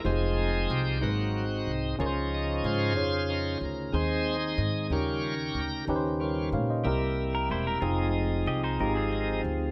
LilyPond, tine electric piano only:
\new Staff \with { instrumentName = "Tine electric piano" } { \time 6/8 \key aes \major \tempo 4. = 62 << { r2. | r2. | r2. | r8 <bes' des''>8 <des'' f''>16 <c'' ees''>8 r4 r16 |
r2. | } \\ { <ees' f' g' aes' c''>4. <aes, ees' ges' aes' ces'' c''>4. | <des des' f' aes' bes' c''>4. <des' ees' f' aes' des''>4. | <ees c' ees' aes' c''>4. <des des' ees' g' bes'>4. | <des' ees' g' ces'' c''>4. <c c' e' g' bes'>4. |
<c' ees' f' aes'>4. <c' ees' f' g' aes'>4. | } >> }